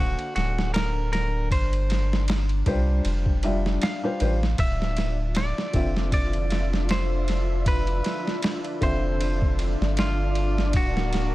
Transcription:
Already playing: D#1 D3 A#3 D4 F#4 C5 F5
0.19 ride
0.36 D1 F#4, snare, ride
0.59 snare
0.74 A#4, snare, ride
1.13 A#4, snare, ride
1.51 G1 C5, kick, ride
1.73 ride
1.90 snare, ride
2.13 snare
2.28 snare, ride
2.49 ride
2.66 C2 G3 D4 F4 C5, kick, ride
3.05 F1, ride
3.26 kick
3.43 G3 D4 F4 E5, ride
3.66 snare
3.82 F5, snare, ride
4.03 G3 D4 F4 C5
4.20 A1 G3 D4 F4 C5, ride
4.43 snare
4.58 D1 D4 F4 D5 E5, kick, ride
4.82 snare
4.97 snare, ride
5.35 D5, snare, ride
5.58 snare
5.73 F1 D3 C4 F4 E5, kick, ride
5.97 snare
6.12 D5, kick, ride
6.33 ride
6.50 snare, ride
6.73 snare
6.89 C5, snare, ride
7.28 snare, ride
7.66 B4, kick, ride
7.87 ride
8.04 snare, ride
8.27 snare
8.42 snare, ride
8.65 ride
8.81 F1 D3 C4 F4 C5 E5, kick, ride
9.21 ride
9.42 kick
9.59 ride
9.81 G1, snare
9.97 F4, snare, ride
10.35 ride
10.58 snare
10.73 D1 F#4 A#4 F5, kick, ride
10.97 snare
11.13 snare, ride

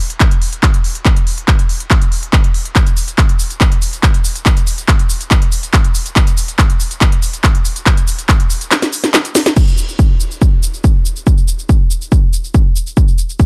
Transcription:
0.10 closed hi-hat
0.20 kick, clap, closed hi-hat
0.31 closed hi-hat
0.42 open hi-hat
0.53 closed hi-hat
0.63 kick, clap, closed hi-hat
0.74 closed hi-hat
0.84 open hi-hat
0.95 closed hi-hat
1.05 kick, clap, closed hi-hat
1.17 closed hi-hat
1.27 open hi-hat
1.38 closed hi-hat
1.48 kick, clap, closed hi-hat
1.59 closed hi-hat
1.69 open hi-hat
1.80 closed hi-hat
1.91 kick, clap, closed hi-hat
2.02 closed hi-hat
2.12 open hi-hat
2.23 closed hi-hat
2.33 kick, clap, closed hi-hat
2.44 closed hi-hat
2.54 open hi-hat
2.65 closed hi-hat
2.76 kick, clap, closed hi-hat, shaker
2.87 closed hi-hat, shaker
2.97 open hi-hat, shaker
3.08 closed hi-hat, shaker
3.18 kick, clap, closed hi-hat, shaker
3.29 closed hi-hat
3.39 open hi-hat, shaker
3.50 closed hi-hat, shaker
3.61 kick, clap, closed hi-hat, shaker
3.72 closed hi-hat
3.82 open hi-hat, shaker
3.93 closed hi-hat, shaker
4.03 kick, clap, closed hi-hat, shaker
4.14 closed hi-hat
4.25 open hi-hat, shaker
4.36 closed hi-hat, shaker
4.46 kick, clap, closed hi-hat, shaker
4.57 closed hi-hat, shaker
4.67 open hi-hat, shaker
4.78 closed hi-hat, shaker
4.88 kick, clap, closed hi-hat, shaker
4.99 closed hi-hat
5.10 open hi-hat, shaker
5.21 closed hi-hat, shaker
5.31 kick, clap, closed hi-hat, shaker
5.42 closed hi-hat
5.52 open hi-hat, shaker
5.63 closed hi-hat, shaker
5.73 kick, clap, closed hi-hat, shaker
5.84 closed hi-hat
5.95 open hi-hat, shaker
6.06 closed hi-hat, shaker
6.16 kick, clap, closed hi-hat, shaker
6.27 closed hi-hat, shaker
6.37 open hi-hat, shaker
6.48 closed hi-hat, shaker
6.59 kick, clap, closed hi-hat, shaker
6.70 closed hi-hat
6.80 open hi-hat, shaker
6.91 closed hi-hat, shaker
7.01 kick, clap, closed hi-hat, shaker
7.12 closed hi-hat
7.22 open hi-hat, shaker
7.33 closed hi-hat, shaker
7.44 kick, clap, closed hi-hat, shaker
7.55 closed hi-hat
7.65 open hi-hat, shaker
7.76 closed hi-hat, shaker
7.86 kick, clap, closed hi-hat, shaker
7.97 closed hi-hat, shaker
8.08 open hi-hat, shaker
8.19 closed hi-hat, shaker
8.29 kick, clap, closed hi-hat, shaker
8.40 closed hi-hat
8.50 open hi-hat, shaker
8.61 closed hi-hat, shaker
8.71 snare, clap, closed hi-hat, shaker
8.82 snare, closed hi-hat, shaker
8.93 open hi-hat, shaker
9.04 snare, closed hi-hat, shaker
9.14 snare, clap, closed hi-hat, shaker
9.25 closed hi-hat, shaker
9.35 snare, open hi-hat, shaker
9.46 snare, closed hi-hat, shaker
9.56 kick, crash, shaker
9.68 shaker
9.78 shaker
9.89 shaker
9.99 kick, shaker
10.20 shaker
10.31 shaker
10.42 kick, shaker
10.63 shaker
10.74 shaker
10.84 kick, shaker
11.05 shaker
11.16 shaker
11.27 kick, shaker
11.38 shaker
11.48 shaker
11.59 shaker
11.69 kick, shaker
11.91 shaker
12.02 shaker
12.12 kick, shaker
12.33 shaker
12.44 shaker
12.54 kick, shaker
12.76 shaker
12.87 shaker
12.97 kick, shaker
13.08 shaker
13.18 shaker
13.29 shaker
13.40 kick, shaker

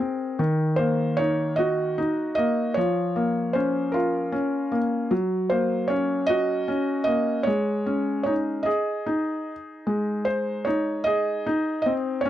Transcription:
Already playing: G#4 A#4
0.00 C4
0.39 D#3
0.76 A#3 C5
1.17 D#4 C#5
1.56 F#4 D#5
1.98 D#4
2.35 A#3 D#5
2.74 F3 C#5
3.16 A#3
3.53 C#4 C5
3.92 F4 A#4
4.32 C#4
4.72 A#3
5.11 F#3
5.50 A#3 C5
5.88 C#4 C#5
6.27 F#4 D#5
6.68 C#4
7.04 A#3 D#5
7.43 G#3 C#5
7.86 C#4
8.23 D#4 C#5
8.63 G#4 D#5
9.06 D#4
9.87 G#3
10.25 C5
10.65 D#4 C#5
11.04 G#4 D#5
11.46 D#4
11.82 D#5
11.86 C4
12.21 C#5
12.25 C#4

